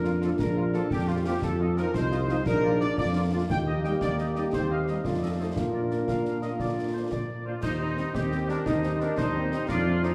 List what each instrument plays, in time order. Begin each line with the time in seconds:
Already playing: tuba F2, euphonium D4, trumpet section A#4
0.04 french horn section A#3 D4 F4, woodwind section F4 F5, snare
0.22 trombone section F3 A#3, french horn section A#3 D4 F4, woodwind section F4 F5, trumpet section A4, snare
0.39 tuba A#1, trumpet section A#4, concert bass drum, snare
0.56 french horn section A#3 D4 F4, woodwind section F4 F5
0.73 trombone section F3 A#3, french horn section A#3 D4 F4, woodwind section F4 F5, trumpet section A4, snare
0.91 tuba F2, euphonium G4, trumpet section G4, concert bass drum, snare
1.07 french horn section A#3 D4 F4, woodwind section F4 F5, trumpet section F4
1.25 trombone section F3 A#3, french horn section A#3 D4 F4, woodwind section F4 F5, trumpet section G4
1.42 tuba F2, euphonium F4, trumpet section A4, concert bass drum, snare
1.59 french horn section C4 D#4 F4, woodwind section F4 D#5
1.77 trombone section F3 D#4, french horn section C4 D#4 F4, woodwind section F4 D#5, trumpet section A#4, snare
1.94 tuba C2, euphonium D#4, trumpet section C5, concert bass drum, snare
2.12 french horn section C4 D#4 F4, woodwind section F4 D#5, snare
2.28 trombone section F3 D#4, french horn section C4 D#4 F4, woodwind section F4 D#5, trumpet section C5, snare
2.46 tuba A#1, euphonium D4, trumpet section A#4, concert bass drum, snare
2.64 french horn section A#3 D4 F4, woodwind section F4 D5
2.81 trombone section F3 D4, french horn section A#3 D4 F4, woodwind section F4 D5, trumpet section D5, snare
2.98 tuba F2, euphonium F4, trumpet section D5, concert bass drum, snare
3.15 french horn section A#3 D4 F4, woodwind section F4 D5
3.32 trombone section F3 D4, french horn section A#3 D4 F4, woodwind section F4 D5
3.50 tuba D#2, french horn section A#3 D#4 G4, euphonium D#4, trumpet section G5, concert bass drum, snare, crash
3.67 woodwind section G4 D#5, trumpet section D#5
3.84 trombone section G3 D#4, woodwind section G4 D#5, trumpet section G5, snare
4.01 tuba D#2, euphonium G4, trumpet section D5, concert bass drum, snare
4.18 woodwind section G4 D#5, trumpet section D#5, snare
4.36 trombone section G3 D#4, woodwind section G4 D#5, trumpet section D5, snare
4.53 tuba D#2, french horn section C4 D#4 G4, euphonium G4, trumpet section C5, concert bass drum, snare
4.71 woodwind section G4 D#5, trumpet section F5
4.87 trombone section G3 D#4, woodwind section G4 D#5, trumpet section D#5, snare
5.04 tuba F2, french horn section A3 D#4 F4, euphonium F4, trumpet section D5, concert bass drum, snare
5.22 woodwind section A4 D#5
5.39 trombone section A3 D#4, woodwind section A4 D#5, trumpet section C5
5.56 tuba A#2, french horn section A#3 D4 F4, euphonium D4, trumpet section A#4, concert bass drum, snare
5.74 woodwind section A#4 D5
5.91 trombone section A#3 D4, woodwind section A#4 D5, snare
6.08 tuba A#2, woodwind section F5, concert bass drum, snare
6.25 snare
6.42 trombone section A#3 D4, woodwind section D#5, snare
6.59 tuba A#2, woodwind section D5, concert bass drum, snare
6.93 trombone section A#3 D4, woodwind section C5
7.11 tuba A#2, woodwind section D5, concert bass drum, snare
7.44 trombone section A#3 D4, flute section F4, woodwind section F4 C5, trumpet section D5
7.62 tuba D#2, flute section D#4, woodwind section D#4, trumpet section C5, concert bass drum, snare, crash
7.79 french horn section G3 C4, woodwind section D#4, flute section D#4, trumpet section C5
7.97 french horn section G3 C4, snare
8.13 tuba D#2, trombone section C4, flute section G4, woodwind section G4, trumpet section D#5, concert bass drum, snare
8.31 french horn section G3 C4, snare
8.49 french horn section G3 C4, woodwind section D4, flute section D4, trumpet section A#4, snare
8.65 tuba D#2, flute section D#4, trombone section D#4, woodwind section D#4, trumpet section C5, concert bass drum, snare
8.83 french horn section G3 C4, snare
9.00 french horn section G3 C4, woodwind section D4, flute section D4, trumpet section A#4, snare
9.16 tuba D#2, trombone section D4, woodwind section D#4, flute section D#4, trumpet section C5, concert bass drum, snare
9.34 french horn section G3 C4, trombone section C4
9.51 french horn section G3 C4, trombone section D#4, snare
9.69 tuba F2, trombone section D4, woodwind section F4, flute section F4, trumpet section D5, concert bass drum, snare
9.86 french horn section A3 C4
10.03 french horn section A3 C4, flute section D#4, woodwind section D#4, trumpet section C5, snare